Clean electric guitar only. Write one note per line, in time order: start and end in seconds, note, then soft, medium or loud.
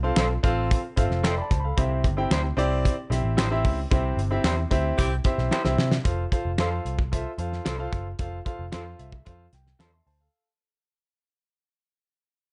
0.17 0.26 F4 medium
0.17 0.26 A4 medium
0.17 0.27 C5 medium
1.24 1.33 F4 medium
1.24 1.33 A4 loud
1.24 1.34 C5 loud
2.31 2.40 E4 medium
2.31 2.40 G4 loud
2.31 2.41 C5 loud
3.37 3.47 E4 loud
3.37 3.47 G4 loud
3.37 3.48 C5 loud
4.44 4.54 E4 medium
4.44 4.54 G4 loud
4.44 4.54 C5 loud
5.52 5.61 E4 loud
5.52 5.61 G4 loud
5.52 5.62 C5 loud
6.59 6.68 F4 medium
6.59 6.68 A4 medium
6.59 6.69 C5 loud
7.65 7.75 F4 medium
7.65 7.75 A4 medium
7.65 7.75 C5 medium
8.72 8.82 F4 medium
8.72 8.82 A4 medium
8.72 8.83 C5 medium
9.79 9.89 F4 medium
9.79 9.89 A4 medium
9.79 9.90 C5 medium